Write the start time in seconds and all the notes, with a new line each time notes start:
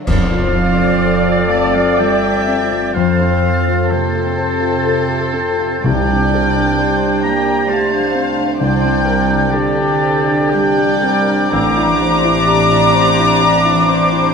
Already playing: D3 F#3 D4 F#4 A4
0.07 F2 F3 C4 A4 C5 D5 F5 A6, concert bass drum, crash
0.32 F4
0.40 C4
0.56 C5
0.72 F4
0.80 F4
1.04 A4
1.27 F4
1.36 C5
1.51 A3 C5 F5 A5
1.67 A4
1.74 F3 F4 D5 F5
1.98 G3 F4 A4 E5 G5
2.23 F4
2.32 C4
2.47 C4
2.64 F4
2.71 F4
2.94 F2 F3 C4 A4 C5 F5 A6
3.20 C4
3.44 C5
3.61 F4
3.68 F4
3.90 C3 A#3 C4 A4 C5 A6
4.15 F4
4.23 C5
4.37 A4 C5
4.54 A4
4.61 F4
4.84 F4 A4
5.08 F4
5.33 C4
5.51 F4
5.59 F4
5.84 C2 C3 G3 D4 G4 D5 G5 G6
6.09 D4
6.16 G3
6.33 A#4 C5
6.48 C4
6.56 D4
6.79 D4 G4 C5
7.02 D4
7.09 G4
7.23 A#3 C5 D5 G5 A#5
7.39 D4
7.46 D4
7.68 A3 C4 G4 C5 F5 A5
7.91 D4
7.99 G3
8.15 C4
8.29 C4
8.37 D4
8.58 C2 C3 G3 D4 G4 C5 D5 G5 G6
8.84 C4
8.91 G3
9.06 A#4 C5
9.22 C4
9.30 D4
9.51 D3 D4 G4 A4 D5 G6
9.77 D4
9.85 G4
10.03 C5
10.19 D4
10.28 D4
10.50 G3 C4 D4 G4 D5 G5 G6
10.78 D4
10.85 G3
11.02 C4 A#4
11.18 C4
11.28 D4
11.50 A1 A2 A3 C4 D4 G4 A#5 D6 G6
11.77 E4
11.84 E3
11.99 C5
12.15 C4
12.25 E4
12.46 G4 D5
12.72 E4
12.79 G4
12.94 C5
13.19 E4
13.42 C4 G4 D5
13.64 E4
13.73 E3
13.89 C4 C5
14.04 C4
14.12 E4